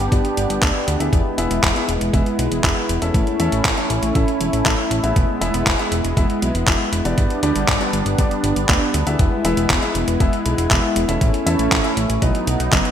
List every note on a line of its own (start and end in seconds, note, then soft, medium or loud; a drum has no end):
0.00 3.11 B3 medium
0.00 1.11 D4 medium
0.00 1.11 G4 medium
0.12 0.21 G1 medium
0.12 0.59 B3 medium
0.12 0.59 D4 medium
0.12 0.59 G4 medium
0.12 0.59 D5 medium
0.12 kick loud
0.12 closed hi-hat medium
0.25 closed hi-hat soft
0.37 0.47 G1 medium
0.37 closed hi-hat medium
0.50 0.59 G1 medium
0.50 closed hi-hat medium
0.62 0.72 D2 loud
0.62 0.97 B3 medium
0.62 0.97 D4 medium
0.62 0.97 G4 medium
0.62 0.97 D5 medium
0.62 kick loud
0.62 clap loud
0.62 closed hi-hat medium
0.87 0.97 D2 medium
0.87 closed hi-hat medium
1.00 1.09 D2 medium
1.00 1.35 B3 medium
1.00 1.35 E4 medium
1.00 1.35 G#4 medium
1.00 1.35 E5 medium
1.00 closed hi-hat soft
1.13 1.22 E1 loud
1.13 3.12 G#3 medium
1.13 7.14 E4 medium
1.13 kick loud
1.13 closed hi-hat medium
1.38 1.47 E1 medium
1.38 1.73 B3 medium
1.38 1.73 E4 medium
1.38 1.73 G#4 medium
1.38 1.73 E5 loud
1.38 closed hi-hat medium
1.51 1.60 E1 medium
1.51 closed hi-hat soft
1.63 1.73 E1 loud
1.63 kick loud
1.63 clap loud
1.63 closed hi-hat medium
1.76 1.90 B3 medium
1.76 1.90 E4 medium
1.76 1.90 G#4 medium
1.76 1.90 E5 medium
1.76 closed hi-hat soft
1.88 1.98 E1 medium
1.88 closed hi-hat medium
2.01 2.10 E1 medium
2.01 closed hi-hat soft
2.14 2.23 E1 medium
2.14 2.61 B3 medium
2.14 2.61 E4 medium
2.14 2.61 G#4 medium
2.14 2.61 E5 medium
2.14 kick loud
2.14 closed hi-hat medium
2.26 closed hi-hat soft
2.39 2.48 B1 medium
2.39 closed hi-hat medium
2.51 2.61 E1 medium
2.51 closed hi-hat soft
2.64 2.73 E1 loud
2.64 2.99 B3 medium
2.64 2.99 E4 medium
2.64 2.99 G#4 medium
2.64 2.99 E5 medium
2.64 kick loud
2.64 clap loud
2.64 closed hi-hat medium
2.89 2.99 E1 medium
2.89 closed hi-hat medium
3.02 3.11 E1 medium
3.02 3.37 C#4 medium
3.02 3.37 E4 medium
3.02 3.37 A4 medium
3.02 3.37 E5 medium
3.02 closed hi-hat soft
3.14 3.24 A1 loud
3.14 5.14 A3 medium
3.14 5.14 C#4 medium
3.14 kick loud
3.14 closed hi-hat medium
3.27 closed hi-hat soft
3.40 3.49 E2 medium
3.40 3.74 C#4 medium
3.40 3.74 E4 medium
3.40 3.74 A4 medium
3.40 3.74 E5 loud
3.40 closed hi-hat medium
3.52 3.62 A1 medium
3.52 closed hi-hat soft
3.65 3.74 A1 loud
3.65 kick loud
3.65 clap loud
3.65 closed hi-hat medium
3.77 3.92 C#4 medium
3.77 3.92 E4 medium
3.77 3.92 A4 medium
3.77 3.92 E5 medium
3.77 closed hi-hat soft
3.90 3.99 A1 loud
3.90 closed hi-hat medium
4.03 4.12 A1 medium
4.03 closed hi-hat soft
4.15 4.25 A1 medium
4.15 4.63 C#4 medium
4.15 4.63 E4 medium
4.15 4.63 A4 medium
4.15 4.63 E5 medium
4.15 kick loud
4.15 closed hi-hat medium
4.28 closed hi-hat soft
4.41 4.50 E1 medium
4.41 closed hi-hat medium
4.53 4.63 A1 medium
4.53 closed hi-hat soft
4.65 4.75 A1 loud
4.65 5.00 C#4 medium
4.65 5.00 E4 medium
4.65 5.00 A4 medium
4.65 5.00 E5 medium
4.65 kick loud
4.65 clap loud
4.65 closed hi-hat medium
4.91 5.00 A1 medium
4.91 closed hi-hat medium
5.03 5.13 A1 medium
5.03 5.38 B3 medium
5.03 5.38 E4 medium
5.03 5.38 G#4 medium
5.03 5.38 E5 medium
5.03 closed hi-hat soft
5.16 5.26 E1 loud
5.16 7.16 G#3 medium
5.16 11.17 B3 medium
5.16 kick loud
5.16 closed hi-hat medium
5.41 5.51 E1 medium
5.41 5.76 B3 medium
5.41 5.76 E4 medium
5.41 5.76 G#4 medium
5.41 5.76 E5 loud
5.41 closed hi-hat medium
5.54 5.63 E1 medium
5.54 closed hi-hat soft
5.66 5.76 E1 loud
5.66 kick loud
5.66 clap loud
5.66 closed hi-hat medium
5.79 5.94 B3 medium
5.79 5.94 E4 medium
5.79 5.94 G#4 medium
5.79 5.94 E5 medium
5.79 closed hi-hat soft
5.92 6.01 E1 medium
5.92 closed hi-hat medium
6.04 6.14 E1 medium
6.04 closed hi-hat soft
6.17 6.26 E1 medium
6.17 6.64 B3 medium
6.17 6.64 E4 medium
6.17 6.64 G#4 medium
6.17 6.64 E5 medium
6.17 kick loud
6.17 closed hi-hat medium
6.30 closed hi-hat soft
6.42 6.52 B1 medium
6.42 closed hi-hat medium
6.55 6.64 E1 medium
6.55 closed hi-hat soft
6.67 6.77 E1 loud
6.67 7.02 B3 medium
6.67 7.02 E4 medium
6.67 7.02 G#4 medium
6.67 7.02 E5 medium
6.67 kick loud
6.67 clap loud
6.67 closed hi-hat medium
6.92 7.02 E1 medium
6.92 closed hi-hat medium
7.05 7.14 E1 medium
7.05 7.40 B3 medium
7.05 7.40 D4 medium
7.05 7.40 G4 medium
7.05 7.40 D5 medium
7.05 closed hi-hat soft
7.18 7.27 G1 loud
7.18 9.18 G3 medium
7.18 9.18 D4 medium
7.18 kick loud
7.18 closed hi-hat medium
7.30 closed hi-hat soft
7.43 7.52 D2 medium
7.43 7.78 B3 medium
7.43 7.78 D4 medium
7.43 7.78 G4 medium
7.43 7.78 D5 loud
7.43 closed hi-hat medium
7.56 7.65 G1 medium
7.56 closed hi-hat soft
7.68 7.78 G1 loud
7.68 kick loud
7.68 clap loud
7.68 closed hi-hat medium
7.81 7.95 B3 medium
7.81 7.95 D4 medium
7.81 7.95 G4 medium
7.81 7.95 D5 medium
7.81 closed hi-hat soft
7.93 8.03 G1 medium
7.93 closed hi-hat medium
8.06 8.15 G1 medium
8.06 closed hi-hat soft
8.18 8.28 G1 medium
8.18 8.66 B3 medium
8.18 8.66 D4 medium
8.18 8.66 G4 medium
8.18 8.66 D5 medium
8.18 kick loud
8.18 closed hi-hat medium
8.31 closed hi-hat soft
8.44 8.53 G1 medium
8.44 closed hi-hat medium
8.56 8.66 G1 medium
8.56 closed hi-hat soft
8.69 8.78 D2 loud
8.69 9.04 B3 medium
8.69 9.04 D4 medium
8.69 9.04 G4 medium
8.69 9.04 D5 medium
8.69 kick loud
8.69 clap loud
8.69 closed hi-hat medium
8.94 9.04 D2 medium
8.94 closed hi-hat medium
9.07 9.16 D2 medium
9.07 9.42 B3 medium
9.07 9.42 E4 medium
9.07 9.42 G#4 medium
9.07 9.42 E5 medium
9.07 closed hi-hat medium
9.19 9.29 E1 loud
9.19 11.19 G#3 medium
9.19 11.19 E4 medium
9.19 kick loud
9.19 closed hi-hat medium
9.45 9.54 E1 medium
9.45 9.80 B3 medium
9.45 9.80 E4 medium
9.45 9.80 G#4 medium
9.45 9.80 E5 loud
9.45 closed hi-hat medium
9.57 9.67 E1 medium
9.57 closed hi-hat medium
9.70 9.79 E1 loud
9.70 kick loud
9.70 clap loud
9.70 closed hi-hat medium
9.82 9.97 B3 medium
9.82 9.97 E4 medium
9.82 9.97 G#4 medium
9.82 9.97 E5 medium
9.82 closed hi-hat soft
9.95 10.04 E1 medium
9.95 closed hi-hat medium
10.08 10.17 E1 medium
10.08 closed hi-hat medium
10.20 10.30 E1 loud
10.20 10.68 B3 medium
10.20 10.68 E4 medium
10.20 10.68 G#4 medium
10.20 10.68 E5 medium
10.20 kick loud
10.20 closed hi-hat medium
10.33 closed hi-hat soft
10.46 10.55 B1 medium
10.46 closed hi-hat medium
10.58 10.67 E1 medium
10.58 closed hi-hat medium
10.71 10.80 E1 loud
10.71 11.06 B3 medium
10.71 11.06 E4 medium
10.71 11.06 G#4 medium
10.71 11.06 E5 medium
10.71 kick loud
10.71 clap loud
10.71 closed hi-hat medium
10.96 11.05 E1 medium
10.96 closed hi-hat medium
11.08 11.18 E1 medium
11.08 11.43 C#4 medium
11.08 11.43 E4 medium
11.08 11.43 A4 medium
11.08 11.43 E5 medium
11.08 closed hi-hat medium
11.21 11.31 A1 loud
11.21 12.21 A3 medium
11.21 12.21 C#4 medium
11.21 12.21 E4 medium
11.21 kick loud
11.21 closed hi-hat medium
11.34 closed hi-hat soft
11.46 11.56 E2 medium
11.46 11.81 C#4 medium
11.46 11.81 E4 medium
11.46 11.81 A4 medium
11.46 11.81 E5 loud
11.46 closed hi-hat medium
11.59 11.68 A1 medium
11.59 closed hi-hat medium
11.72 11.81 A1 loud
11.72 kick loud
11.72 clap loud
11.72 closed hi-hat medium
11.84 11.99 C#4 medium
11.84 11.99 E4 medium
11.84 11.99 A4 medium
11.84 11.99 E5 medium
11.84 closed hi-hat soft
11.97 12.06 A1 medium
11.97 closed hi-hat medium
12.10 12.19 A1 medium
12.10 closed hi-hat medium
12.22 12.31 B1 loud
12.22 12.91 F#3 medium
12.22 12.91 B3 medium
12.22 12.70 B3 medium
12.22 12.91 D#4 medium
12.22 12.70 D#4 medium
12.22 12.70 F#4 medium
12.22 12.70 D#5 medium
12.22 kick loud
12.22 closed hi-hat medium
12.35 closed hi-hat soft
12.47 12.57 B1 medium
12.47 closed hi-hat medium
12.60 12.69 B1 medium
12.60 closed hi-hat medium
12.72 12.82 F#1 loud
12.72 12.91 B3 medium
12.72 12.91 D#4 medium
12.72 12.91 F#4 medium
12.72 12.91 D#5 medium
12.72 kick loud
12.72 clap loud
12.72 closed hi-hat medium
12.85 closed hi-hat soft